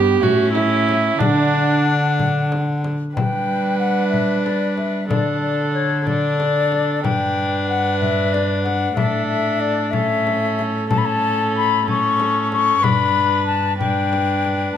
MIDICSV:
0, 0, Header, 1, 6, 480
1, 0, Start_track
1, 0, Tempo, 650054
1, 877, Time_signature, 6, 3, 24, 8
1, 5675, Tempo, 643777
1, 10958, End_track
2, 0, Start_track
2, 0, Title_t, "Flute"
2, 0, Program_c, 0, 73
2, 0, Note_on_c, 0, 79, 62
2, 158, Note_on_c, 0, 76, 64
2, 169, Note_off_c, 0, 79, 0
2, 878, Note_on_c, 0, 78, 65
2, 889, Note_off_c, 0, 76, 0
2, 2089, Note_off_c, 0, 78, 0
2, 2320, Note_on_c, 0, 79, 69
2, 2773, Note_off_c, 0, 79, 0
2, 2799, Note_on_c, 0, 78, 68
2, 3012, Note_off_c, 0, 78, 0
2, 3017, Note_on_c, 0, 76, 65
2, 3264, Note_off_c, 0, 76, 0
2, 3269, Note_on_c, 0, 74, 72
2, 3508, Note_off_c, 0, 74, 0
2, 3526, Note_on_c, 0, 76, 62
2, 3752, Note_off_c, 0, 76, 0
2, 3756, Note_on_c, 0, 74, 65
2, 3990, Note_off_c, 0, 74, 0
2, 3995, Note_on_c, 0, 74, 70
2, 4228, Note_off_c, 0, 74, 0
2, 4233, Note_on_c, 0, 73, 68
2, 4479, Note_on_c, 0, 74, 72
2, 4491, Note_off_c, 0, 73, 0
2, 5188, Note_off_c, 0, 74, 0
2, 5193, Note_on_c, 0, 79, 80
2, 5662, Note_off_c, 0, 79, 0
2, 5678, Note_on_c, 0, 78, 73
2, 5906, Note_off_c, 0, 78, 0
2, 5910, Note_on_c, 0, 76, 75
2, 6159, Note_on_c, 0, 74, 73
2, 6170, Note_off_c, 0, 76, 0
2, 6379, Note_off_c, 0, 74, 0
2, 6383, Note_on_c, 0, 78, 73
2, 6632, Note_on_c, 0, 76, 69
2, 6643, Note_off_c, 0, 78, 0
2, 6856, Note_off_c, 0, 76, 0
2, 6860, Note_on_c, 0, 76, 79
2, 7104, Note_on_c, 0, 74, 82
2, 7115, Note_off_c, 0, 76, 0
2, 7334, Note_on_c, 0, 76, 80
2, 7345, Note_off_c, 0, 74, 0
2, 7859, Note_off_c, 0, 76, 0
2, 8075, Note_on_c, 0, 81, 85
2, 8131, Note_on_c, 0, 83, 69
2, 8142, Note_off_c, 0, 81, 0
2, 8187, Note_on_c, 0, 81, 87
2, 8198, Note_off_c, 0, 83, 0
2, 8558, Note_off_c, 0, 81, 0
2, 8571, Note_on_c, 0, 83, 83
2, 8798, Note_off_c, 0, 83, 0
2, 8813, Note_on_c, 0, 85, 88
2, 9273, Note_off_c, 0, 85, 0
2, 9284, Note_on_c, 0, 85, 87
2, 9514, Note_on_c, 0, 83, 91
2, 9526, Note_off_c, 0, 85, 0
2, 9978, Note_off_c, 0, 83, 0
2, 9982, Note_on_c, 0, 81, 86
2, 10216, Note_off_c, 0, 81, 0
2, 10220, Note_on_c, 0, 79, 82
2, 10926, Note_off_c, 0, 79, 0
2, 10930, Note_on_c, 0, 81, 82
2, 10958, Note_off_c, 0, 81, 0
2, 10958, End_track
3, 0, Start_track
3, 0, Title_t, "Viola"
3, 0, Program_c, 1, 41
3, 0, Note_on_c, 1, 67, 106
3, 167, Note_on_c, 1, 66, 89
3, 178, Note_off_c, 1, 67, 0
3, 390, Note_off_c, 1, 66, 0
3, 395, Note_on_c, 1, 64, 91
3, 879, Note_on_c, 1, 62, 94
3, 890, Note_off_c, 1, 64, 0
3, 1604, Note_off_c, 1, 62, 0
3, 2326, Note_on_c, 1, 71, 66
3, 3728, Note_off_c, 1, 71, 0
3, 3764, Note_on_c, 1, 69, 60
3, 4460, Note_off_c, 1, 69, 0
3, 4474, Note_on_c, 1, 69, 57
3, 5195, Note_on_c, 1, 71, 64
3, 5206, Note_off_c, 1, 69, 0
3, 6627, Note_off_c, 1, 71, 0
3, 6631, Note_on_c, 1, 69, 71
3, 7337, Note_off_c, 1, 69, 0
3, 7353, Note_on_c, 1, 69, 64
3, 8064, Note_off_c, 1, 69, 0
3, 8073, Note_on_c, 1, 69, 73
3, 8778, Note_off_c, 1, 69, 0
3, 8792, Note_on_c, 1, 69, 60
3, 9497, Note_off_c, 1, 69, 0
3, 9507, Note_on_c, 1, 71, 68
3, 10214, Note_off_c, 1, 71, 0
3, 10236, Note_on_c, 1, 71, 61
3, 10958, Note_off_c, 1, 71, 0
3, 10958, End_track
4, 0, Start_track
4, 0, Title_t, "Viola"
4, 0, Program_c, 2, 41
4, 0, Note_on_c, 2, 59, 72
4, 153, Note_on_c, 2, 61, 69
4, 164, Note_off_c, 2, 59, 0
4, 878, Note_on_c, 2, 62, 71
4, 889, Note_off_c, 2, 61, 0
4, 2179, Note_off_c, 2, 62, 0
4, 2328, Note_on_c, 2, 62, 56
4, 3729, Note_off_c, 2, 62, 0
4, 3755, Note_on_c, 2, 62, 52
4, 4456, Note_off_c, 2, 62, 0
4, 4471, Note_on_c, 2, 62, 61
4, 5180, Note_off_c, 2, 62, 0
4, 5189, Note_on_c, 2, 62, 68
4, 6600, Note_off_c, 2, 62, 0
4, 6632, Note_on_c, 2, 62, 62
4, 7347, Note_on_c, 2, 61, 65
4, 7358, Note_off_c, 2, 62, 0
4, 8074, Note_off_c, 2, 61, 0
4, 8078, Note_on_c, 2, 61, 61
4, 8780, Note_off_c, 2, 61, 0
4, 8794, Note_on_c, 2, 61, 67
4, 9511, Note_on_c, 2, 62, 61
4, 9522, Note_off_c, 2, 61, 0
4, 10221, Note_off_c, 2, 62, 0
4, 10226, Note_on_c, 2, 62, 62
4, 10958, Note_off_c, 2, 62, 0
4, 10958, End_track
5, 0, Start_track
5, 0, Title_t, "Cello"
5, 0, Program_c, 3, 42
5, 0, Note_on_c, 3, 43, 74
5, 153, Note_off_c, 3, 43, 0
5, 158, Note_on_c, 3, 45, 79
5, 864, Note_off_c, 3, 45, 0
5, 880, Note_on_c, 3, 50, 72
5, 2154, Note_off_c, 3, 50, 0
5, 2329, Note_on_c, 3, 55, 54
5, 3754, Note_on_c, 3, 50, 52
5, 3765, Note_off_c, 3, 55, 0
5, 5199, Note_on_c, 3, 43, 59
5, 5211, Note_off_c, 3, 50, 0
5, 6623, Note_off_c, 3, 43, 0
5, 6628, Note_on_c, 3, 45, 61
5, 9481, Note_off_c, 3, 45, 0
5, 9508, Note_on_c, 3, 43, 62
5, 10920, Note_off_c, 3, 43, 0
5, 10958, End_track
6, 0, Start_track
6, 0, Title_t, "Frame drum"
6, 170, Note_on_c, 9, 64, 54
6, 244, Note_off_c, 9, 64, 0
6, 408, Note_on_c, 9, 64, 53
6, 481, Note_off_c, 9, 64, 0
6, 656, Note_on_c, 9, 64, 49
6, 729, Note_off_c, 9, 64, 0
6, 889, Note_on_c, 9, 64, 80
6, 963, Note_off_c, 9, 64, 0
6, 1620, Note_on_c, 9, 64, 52
6, 1694, Note_off_c, 9, 64, 0
6, 1861, Note_on_c, 9, 64, 53
6, 1935, Note_off_c, 9, 64, 0
6, 2101, Note_on_c, 9, 64, 45
6, 2175, Note_off_c, 9, 64, 0
6, 2340, Note_on_c, 9, 64, 76
6, 2414, Note_off_c, 9, 64, 0
6, 3053, Note_on_c, 9, 64, 46
6, 3127, Note_off_c, 9, 64, 0
6, 3294, Note_on_c, 9, 64, 49
6, 3368, Note_off_c, 9, 64, 0
6, 3526, Note_on_c, 9, 64, 41
6, 3600, Note_off_c, 9, 64, 0
6, 3770, Note_on_c, 9, 64, 76
6, 3844, Note_off_c, 9, 64, 0
6, 4480, Note_on_c, 9, 64, 50
6, 4554, Note_off_c, 9, 64, 0
6, 4724, Note_on_c, 9, 64, 51
6, 4798, Note_off_c, 9, 64, 0
6, 4962, Note_on_c, 9, 64, 42
6, 5036, Note_off_c, 9, 64, 0
6, 5202, Note_on_c, 9, 64, 76
6, 5276, Note_off_c, 9, 64, 0
6, 5922, Note_on_c, 9, 64, 49
6, 5997, Note_off_c, 9, 64, 0
6, 6165, Note_on_c, 9, 64, 48
6, 6240, Note_off_c, 9, 64, 0
6, 6400, Note_on_c, 9, 64, 43
6, 6474, Note_off_c, 9, 64, 0
6, 6633, Note_on_c, 9, 64, 73
6, 6707, Note_off_c, 9, 64, 0
6, 7349, Note_on_c, 9, 64, 52
6, 7424, Note_off_c, 9, 64, 0
6, 7601, Note_on_c, 9, 64, 47
6, 7676, Note_off_c, 9, 64, 0
6, 7840, Note_on_c, 9, 64, 46
6, 7915, Note_off_c, 9, 64, 0
6, 8076, Note_on_c, 9, 64, 74
6, 8151, Note_off_c, 9, 64, 0
6, 8803, Note_on_c, 9, 64, 52
6, 8877, Note_off_c, 9, 64, 0
6, 9038, Note_on_c, 9, 64, 49
6, 9113, Note_off_c, 9, 64, 0
6, 9280, Note_on_c, 9, 64, 44
6, 9355, Note_off_c, 9, 64, 0
6, 9517, Note_on_c, 9, 64, 75
6, 9592, Note_off_c, 9, 64, 0
6, 10238, Note_on_c, 9, 64, 51
6, 10313, Note_off_c, 9, 64, 0
6, 10478, Note_on_c, 9, 64, 46
6, 10553, Note_off_c, 9, 64, 0
6, 10717, Note_on_c, 9, 64, 40
6, 10792, Note_off_c, 9, 64, 0
6, 10958, End_track
0, 0, End_of_file